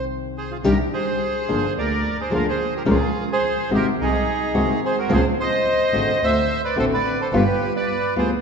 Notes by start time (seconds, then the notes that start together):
Already playing: C2 C3 D#3 A#3 C4 G4
0.38 G#4 C5
0.51 F4 G#4
0.64 C2 C3 D#3 G3 D4 G4 A#4
0.93 G#4 C5
1.48 G1 D3 F3 A#3 D4 G#4
1.76 D2 A#4 D5
2.20 G#4 C5
2.30 D2 D3 F3 A#3 D4 F4 G#4
2.35 A#4
2.49 G#4 C5
2.76 G4 A#4
2.85 C#2 C#3 F3 G#3 C#4 F4 A#4
2.90 F4 G#4
3.32 G#4 C5
3.70 G#1 C3 D#3 G#3 C4 F#4 G4
3.76 A#4
3.98 C2 D#4
4.03 G#4
4.54 C2 C3 D#3 G#3 C4 F#4
4.85 G#4 C5
4.98 F#4 A#4
5.09 C#2 C#3 F3 G#3 C4 F4 G#4
5.14 C5
5.40 C5 D#5
5.92 G#1 D3 A3 C4 F#4
6.21 D2 C5 E5
6.64 B4 D5
6.76 A1 D3 A3 C4 F#4 A4 C5
6.93 B4 D5
7.21 A4 C5
7.32 G1 G3 B3 F4 G4 B4
7.76 B4 D5
8.16 D2 G3 B3 F4 G#4 C5